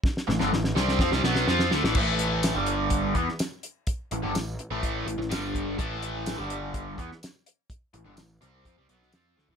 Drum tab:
CC |----------------|x---------------|----------------|----------------|
HH |----------------|--x-x-x-x-x-x-x-|x-x-x-x-x-x-x-x-|x-x-x-x-x-x-x-x-|
TB |----------------|----x-------x---|----x-------x---|----x-------x---|
SD |oooooooooooooooo|----o------oo---|----o------oo---|----o------oo---|
FT |----------------|----------------|----------------|----------------|
BD |o-------o-------|o-------o-o-----|o-------o-----o-|o-------o-o-----|

CC |----------------|
HH |x-x-x-x-x-x-x---|
TB |----x-------x---|
SD |----o------oo-o-|
FT |---------------o|
BD |o-------o-------|